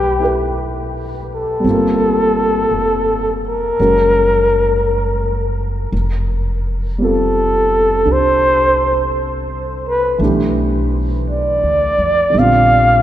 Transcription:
Already playing: upright bass B1, grand piano A3 D4 G4 B4, flugelhorn G4
0.20 grand piano E4 A4 B4
1.35 flugelhorn A4
1.60 grand piano G3 C4
1.64 upright bass G1, grand piano F4
1.71 grand piano A#3
2.71 upright bass F1
3.49 flugelhorn A#4
3.79 upright bass F#1, grand piano G#3 C#4 F#4 A#4
5.92 upright bass F1
6.98 grand piano G3 C4 F4
7.04 grand piano A4, flugelhorn A4
8.05 upright bass C2, grand piano D4 G4
8.12 flugelhorn C5
9.89 flugelhorn B4
10.18 upright bass B1, grand piano E3 A3 D4
10.24 grand piano G4
11.30 flugelhorn D5
11.63 upright bass D2
11.98 upright bass F2
12.30 grand piano D3 G3
12.34 upright bass A#1, grand piano C4
12.39 grand piano F4, flugelhorn F5

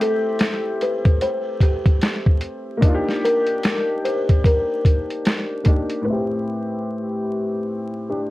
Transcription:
Already playing: upright piano A3 C4 E4 G4
0.01 kalimba A4, closed hi-hat
0.39 finger snap, snare, closed hi-hat
0.81 kalimba B4, closed hi-hat
1.05 kick, closed hi-hat
1.21 kalimba C5, closed hi-hat
1.61 kalimba G4, kick, closed hi-hat
1.86 kick, closed hi-hat
2.01 finger snap, snare, closed hi-hat
2.26 kick
2.41 closed hi-hat
2.77 upright piano A#3 D4
2.82 upright piano D#4, kick, closed hi-hat
2.88 upright piano F4
2.95 upright piano G4
3.09 snare
3.25 kalimba A#4, closed hi-hat
3.47 closed hi-hat
3.64 finger snap, snare, closed hi-hat
4.05 kalimba C5, closed hi-hat
4.29 kick, closed hi-hat
4.45 kalimba A#4, kick, closed hi-hat
4.85 kick, closed hi-hat
5.11 closed hi-hat
5.26 finger snap, snare, closed hi-hat
5.64 upright piano A#3 D4 D#4, kick, closed hi-hat
5.69 upright piano G4
5.89 closed hi-hat
6.01 upright piano A2 B4
6.07 upright piano C4 E4
6.12 upright piano G4
8.09 upright piano D4 G4

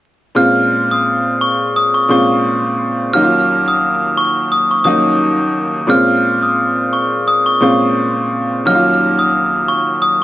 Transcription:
0.35 upright piano A#2 G#3 C4 C#4 F4, glockenspiel F6
0.91 glockenspiel D#6
1.41 glockenspiel C#6
1.76 glockenspiel D#6
1.94 glockenspiel C#6
2.08 upright piano A#2 G#3 C4 C#4 F4, glockenspiel C#6
3.13 upright piano D#2 F#3 A#3 C#4 D#4, glockenspiel F6
3.23 upright piano F4
3.68 glockenspiel D#6
4.17 glockenspiel C#6
4.52 glockenspiel D#6
4.71 glockenspiel C#6
4.84 upright piano D#2 F#3 A#3 C#4 D#4, glockenspiel D#6
5.87 upright piano A#2 G#3 C4 C#4 F4, glockenspiel F6
6.42 glockenspiel D#6
6.93 glockenspiel C#6
7.28 glockenspiel D#6
7.46 glockenspiel C#6
7.60 upright piano A#2 G#3 C4 C#4 F4, glockenspiel C#6
8.65 upright piano D#2 F#3 A#3 C#4 D#4, glockenspiel F6
8.75 upright piano F4
9.19 glockenspiel D#6
9.68 glockenspiel C#6
10.02 glockenspiel D#6

